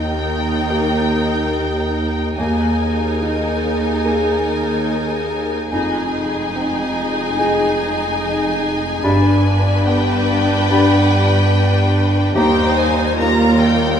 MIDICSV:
0, 0, Header, 1, 11, 480
1, 0, Start_track
1, 0, Key_signature, -3, "major"
1, 0, Tempo, 837989
1, 1362, Time_signature, 4, 2, 24, 8
1, 3762, Tempo, 828729
1, 8066, End_track
2, 0, Start_track
2, 0, Title_t, "Flute"
2, 0, Program_c, 0, 73
2, 397, Note_on_c, 0, 79, 52
2, 623, Note_off_c, 0, 79, 0
2, 1365, Note_on_c, 0, 80, 53
2, 1587, Note_off_c, 0, 80, 0
2, 2314, Note_on_c, 0, 80, 57
2, 2541, Note_off_c, 0, 80, 0
2, 3273, Note_on_c, 0, 80, 59
2, 3499, Note_off_c, 0, 80, 0
2, 4230, Note_on_c, 0, 80, 67
2, 4454, Note_off_c, 0, 80, 0
2, 5191, Note_on_c, 0, 83, 67
2, 5417, Note_off_c, 0, 83, 0
2, 6162, Note_on_c, 0, 83, 71
2, 6385, Note_off_c, 0, 83, 0
2, 7121, Note_on_c, 0, 82, 79
2, 7342, Note_off_c, 0, 82, 0
2, 8066, End_track
3, 0, Start_track
3, 0, Title_t, "Violin section"
3, 0, Program_c, 1, 48
3, 0, Note_on_c, 1, 79, 63
3, 1338, Note_off_c, 1, 79, 0
3, 1359, Note_on_c, 1, 80, 60
3, 3257, Note_off_c, 1, 80, 0
3, 3279, Note_on_c, 1, 80, 71
3, 5653, Note_off_c, 1, 80, 0
3, 5678, Note_on_c, 1, 79, 71
3, 7106, Note_off_c, 1, 79, 0
3, 7113, Note_on_c, 1, 79, 85
3, 7338, Note_off_c, 1, 79, 0
3, 7353, Note_on_c, 1, 80, 78
3, 7592, Note_on_c, 1, 82, 81
3, 7595, Note_off_c, 1, 80, 0
3, 7829, Note_off_c, 1, 82, 0
3, 7831, Note_on_c, 1, 79, 87
3, 8065, Note_off_c, 1, 79, 0
3, 8066, End_track
4, 0, Start_track
4, 0, Title_t, "Violin section"
4, 0, Program_c, 2, 48
4, 0, Note_on_c, 2, 70, 64
4, 1336, Note_off_c, 2, 70, 0
4, 1352, Note_on_c, 2, 70, 68
4, 3254, Note_off_c, 2, 70, 0
4, 3276, Note_on_c, 2, 68, 71
4, 5169, Note_off_c, 2, 68, 0
4, 5185, Note_on_c, 2, 71, 89
4, 7112, Note_off_c, 2, 71, 0
4, 7117, Note_on_c, 2, 72, 86
4, 7573, Note_off_c, 2, 72, 0
4, 7589, Note_on_c, 2, 70, 87
4, 8066, Note_off_c, 2, 70, 0
4, 8066, End_track
5, 0, Start_track
5, 0, Title_t, "Viola section"
5, 0, Program_c, 3, 48
5, 0, Note_on_c, 3, 63, 63
5, 1342, Note_off_c, 3, 63, 0
5, 1362, Note_on_c, 3, 63, 64
5, 3259, Note_off_c, 3, 63, 0
5, 3281, Note_on_c, 3, 63, 70
5, 5172, Note_off_c, 3, 63, 0
5, 5197, Note_on_c, 3, 62, 78
5, 7095, Note_off_c, 3, 62, 0
5, 7114, Note_on_c, 3, 63, 79
5, 7572, Note_off_c, 3, 63, 0
5, 7593, Note_on_c, 3, 65, 85
5, 8066, Note_off_c, 3, 65, 0
5, 8066, End_track
6, 0, Start_track
6, 0, Title_t, "Felt piano"
6, 0, Program_c, 4, 0
6, 0, Control_c, 4, 64, 127
6, 0, Note_on_c, 4, 39, 54
6, 0, Note_on_c, 4, 63, 48
6, 399, Note_on_c, 4, 67, 46
6, 404, Note_on_c, 4, 70, 46
6, 692, Note_off_c, 4, 63, 0
6, 1338, Note_off_c, 4, 67, 0
6, 1340, Note_off_c, 4, 70, 0
6, 1341, Note_off_c, 4, 39, 0
6, 1363, Note_on_c, 4, 39, 60
6, 1373, Control_c, 4, 64, 0
6, 1476, Control_c, 4, 64, 127
6, 1842, Note_on_c, 4, 63, 49
6, 2319, Note_on_c, 4, 68, 48
6, 2323, Note_on_c, 4, 70, 51
6, 2608, Note_off_c, 4, 63, 0
6, 3259, Note_off_c, 4, 39, 0
6, 3259, Note_off_c, 4, 68, 0
6, 3262, Note_off_c, 4, 70, 0
6, 3280, Note_on_c, 4, 41, 63
6, 3292, Control_c, 4, 64, 0
6, 3375, Control_c, 4, 64, 127
6, 3755, Note_on_c, 4, 60, 57
6, 4239, Note_on_c, 4, 63, 53
6, 4241, Note_on_c, 4, 68, 56
6, 4521, Note_off_c, 4, 60, 0
6, 5171, Note_off_c, 4, 41, 0
6, 5172, Note_off_c, 4, 63, 0
6, 5174, Note_off_c, 4, 68, 0
6, 5195, Note_on_c, 4, 43, 77
6, 5207, Control_c, 4, 64, 0
6, 5302, Control_c, 4, 64, 127
6, 5669, Note_on_c, 4, 59, 62
6, 6158, Note_on_c, 4, 62, 56
6, 6159, Note_on_c, 4, 67, 61
6, 6445, Note_off_c, 4, 59, 0
6, 7093, Note_off_c, 4, 62, 0
6, 7093, Note_off_c, 4, 67, 0
6, 7094, Note_off_c, 4, 43, 0
6, 7116, Note_on_c, 4, 39, 85
6, 7127, Control_c, 4, 64, 0
6, 7231, Control_c, 4, 64, 127
6, 7600, Note_on_c, 4, 58, 73
6, 8066, Note_off_c, 4, 39, 0
6, 8066, Note_off_c, 4, 58, 0
6, 8066, End_track
7, 0, Start_track
7, 0, Title_t, "Clarinet"
7, 0, Program_c, 5, 71
7, 402, Note_on_c, 5, 58, 62
7, 580, Note_off_c, 5, 58, 0
7, 1362, Note_on_c, 5, 58, 69
7, 1540, Note_off_c, 5, 58, 0
7, 2317, Note_on_c, 5, 58, 63
7, 2496, Note_off_c, 5, 58, 0
7, 3281, Note_on_c, 5, 63, 74
7, 3457, Note_off_c, 5, 63, 0
7, 4233, Note_on_c, 5, 63, 69
7, 4410, Note_off_c, 5, 63, 0
7, 5189, Note_on_c, 5, 62, 82
7, 5369, Note_off_c, 5, 62, 0
7, 6157, Note_on_c, 5, 62, 81
7, 6336, Note_off_c, 5, 62, 0
7, 7110, Note_on_c, 5, 67, 88
7, 7290, Note_off_c, 5, 67, 0
7, 8066, End_track
8, 0, Start_track
8, 0, Title_t, "French horn section"
8, 0, Program_c, 6, 60
8, 0, Note_on_c, 6, 58, 60
8, 0, Note_on_c, 6, 67, 64
8, 1339, Note_off_c, 6, 58, 0
8, 1340, Note_off_c, 6, 67, 0
8, 1365, Note_on_c, 6, 68, 66
8, 1366, Note_on_c, 6, 58, 62
8, 3183, Note_off_c, 6, 58, 0
8, 3183, Note_off_c, 6, 68, 0
8, 3280, Note_on_c, 6, 56, 70
8, 3283, Note_on_c, 6, 63, 75
8, 5172, Note_off_c, 6, 56, 0
8, 5173, Note_off_c, 6, 63, 0
8, 5190, Note_on_c, 6, 59, 84
8, 5191, Note_on_c, 6, 62, 82
8, 7017, Note_off_c, 6, 59, 0
8, 7017, Note_off_c, 6, 62, 0
8, 7116, Note_on_c, 6, 55, 87
8, 7116, Note_on_c, 6, 58, 87
8, 8066, Note_off_c, 6, 55, 0
8, 8066, Note_off_c, 6, 58, 0
8, 8066, End_track
9, 0, Start_track
9, 0, Title_t, "Timpani"
9, 0, Program_c, 7, 47
9, 0, Note_on_c, 7, 51, 85
9, 137, Note_off_c, 7, 51, 0
9, 8066, End_track
10, 0, Start_track
10, 0, Title_t, "Cello section"
10, 0, Program_c, 8, 48
10, 0, Note_on_c, 8, 39, 67
10, 1339, Note_off_c, 8, 39, 0
10, 1360, Note_on_c, 8, 39, 65
10, 3258, Note_off_c, 8, 39, 0
10, 3281, Note_on_c, 8, 41, 72
10, 5172, Note_off_c, 8, 41, 0
10, 5190, Note_on_c, 8, 43, 81
10, 7092, Note_off_c, 8, 43, 0
10, 7112, Note_on_c, 8, 39, 85
10, 8066, Note_off_c, 8, 39, 0
10, 8066, End_track
11, 0, Start_track
11, 0, Title_t, "Double bass section"
11, 0, Program_c, 10, 48
11, 0, Note_on_c, 10, 39, 66
11, 1341, Note_off_c, 10, 39, 0
11, 1366, Note_on_c, 10, 39, 68
11, 3261, Note_off_c, 10, 39, 0
11, 3284, Note_on_c, 10, 29, 72
11, 5173, Note_off_c, 10, 29, 0
11, 5193, Note_on_c, 10, 31, 81
11, 7093, Note_off_c, 10, 31, 0
11, 7120, Note_on_c, 10, 39, 92
11, 8066, Note_off_c, 10, 39, 0
11, 8066, End_track
0, 0, End_of_file